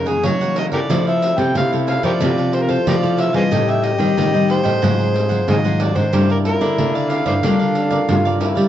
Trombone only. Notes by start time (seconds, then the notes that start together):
Already playing: D#4
0.83 D#4
0.90 E4
2.22 F4
3.52 G4
4.83 G#4
6.13 E4
7.44 D4
8.10 F4
8.42 E4